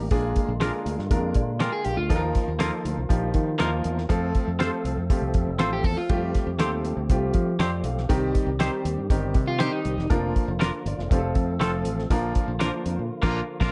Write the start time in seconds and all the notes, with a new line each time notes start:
Already playing: A#3
0.11 A#1 D3 G#3 A#3 D4 F4 G#4, kick, closed hi-hat
0.36 kick, closed hi-hat
0.48 A#1
0.60 G#3 A#3 D4 F4 G#4 A#4, snare, closed hi-hat
0.86 D2, closed hi-hat
0.99 G2, snare
1.10 F2 G#3 A#3 D4 F4 A#4, kick, closed hi-hat
1.34 A#2 F4 D5, kick, closed hi-hat
1.60 G#3 D4 F4 A#4 G5, snare, closed hi-hat
1.72 G#4
1.85 A#1 G4 G#4 F5, closed hi-hat
1.97 D2 F4
2.09 D#2 D#3 F3 A#3 D#4 F4 A4, kick, closed hi-hat
2.16 A#4
2.35 kick, snare, closed hi-hat
2.48 D#2
2.59 F3 A#3 D#4 F4 A4 A#4, snare, closed hi-hat
2.85 D2, closed hi-hat
2.98 C2
3.09 A#1 F3 A#3 D#4 F4 G4, kick, closed hi-hat
3.34 D#3, kick, closed hi-hat
3.59 D#2 F3 A#3 D#4 E4 F4 A#4, snare, closed hi-hat
3.65 F4
3.84 E2, closed hi-hat
3.98 snare
4.09 F2 F3 A3 C4 F4 A4, kick, closed hi-hat
4.35 kick, closed hi-hat
4.48 F2
4.59 F3 A3 C4 F4 G4 A4 C5, snare, closed hi-hat
4.66 A4
4.85 C2, closed hi-hat
4.97 F2
5.10 F3 A3 C4 F4 G4, kick, closed hi-hat
5.22 C2
5.34 F2, kick, closed hi-hat
5.47 F1
5.59 A1 F3 A3 C4 F4 A4 C5, snare, closed hi-hat
5.73 G4
5.84 E2 A4, kick, open hi-hat
5.97 F4
6.09 F2 G3 A3 C4 F4 G4, kick, closed hi-hat
6.34 kick, snare, closed hi-hat
6.47 F2
6.59 D#2 G3 A3 C4 F4 G4 A4 C5, snare, closed hi-hat
6.85 closed hi-hat
6.97 D2
7.10 C2 G3 A3 C4 F4 G4, kick, closed hi-hat
7.34 F3, kick, closed hi-hat
7.59 F2 A3 C4 F4 G4 C5 D5, snare, closed hi-hat
7.84 B1 A4 F5, closed hi-hat
7.98 snare
8.09 C2 D#3 G3 C4 D#4 G4, kick, closed hi-hat
8.35 kick, closed hi-hat
8.47 C2
8.60 D#3 G3 C4 D#4 G4 C5, snare, closed hi-hat
8.85 D#2, closed hi-hat
8.97 G2
9.10 G1 D#3 G3 C4 D#4 G4, kick, closed hi-hat
9.34 C3, kick, closed hi-hat
9.47 F4
9.59 D#3 G3 C4 D#4 G4 C5, snare, closed hi-hat
9.73 D#4
9.85 C2, closed hi-hat
9.98 E1, snare
10.10 F1 D3 F3 A#3 D4 F4 A#4, kick, closed hi-hat
10.36 kick, closed hi-hat
10.48 F1
10.59 A#3 D4 F4 A#4, snare, closed hi-hat
10.86 G1 F4 D5, closed hi-hat
10.98 F1, snare
11.09 F1 F3 A3 C4 F4 G4 A4, kick, closed hi-hat
11.18 A4
11.35 F2, kick, closed hi-hat
11.60 F1 F3 A3 C4 F4 A4, snare, closed hi-hat
11.85 A1, closed hi-hat
11.99 snare
12.10 A#1 D3 F3 A#3 D4 F4 A#4, kick, closed hi-hat
12.35 kick, closed hi-hat
12.48 A#1
12.60 F3 A#3 D4 F4 A#4 C5, snare, closed hi-hat
12.86 F2, closed hi-hat
12.99 A#2
13.22 A#1 F3 A#3 D4 F4 A#4, kick, snare, crash
13.60 A#1 A#3 D4 F4 A#4, kick, snare, crash